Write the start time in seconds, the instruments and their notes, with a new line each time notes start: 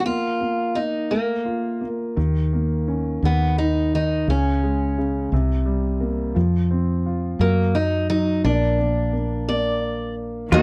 0.00 steel-string acoustic guitar F#4
0.06 upright piano A#3, steel-string acoustic guitar F4
0.41 upright piano A#3
0.75 upright piano A#3, steel-string acoustic guitar D#4
1.11 upright piano A#3, steel-string acoustic guitar A#3
1.45 upright piano F4
1.81 upright piano A#3
2.16 fretless electric bass D#2, upright piano D#3
2.53 upright piano A#3
2.88 upright piano C#4
3.23 fretless electric bass D#2, upright piano D#3, steel-string acoustic guitar B3
3.58 upright piano D#3, steel-string acoustic guitar D#4
3.94 upright piano D#3, steel-string acoustic guitar D#4
4.28 fretless electric bass C#2, upright piano C#3, steel-string acoustic guitar C#4
4.63 upright piano G#3
4.98 upright piano C#3
5.32 fretless electric bass C2, upright piano C3
5.65 upright piano G3
6.00 upright piano A#3
6.35 fretless electric bass F2, upright piano F3
6.71 upright piano C4
7.06 upright piano F4
7.39 fretless electric bass F#2, upright piano F#3, steel-string acoustic guitar A#3
7.75 upright piano F#3, steel-string acoustic guitar D#4
8.09 upright piano F#3, steel-string acoustic guitar D#4
8.44 fretless electric bass A#1, upright piano A#3, steel-string acoustic guitar D4
8.79 upright piano A#3
9.13 upright piano A#3
9.48 upright piano A#3, steel-string acoustic guitar D5
10.52 fretless electric bass D#2, upright piano D#3, string section D#3 A#3, steel-string acoustic guitar F#3 D#5, pedal steel guitar F#4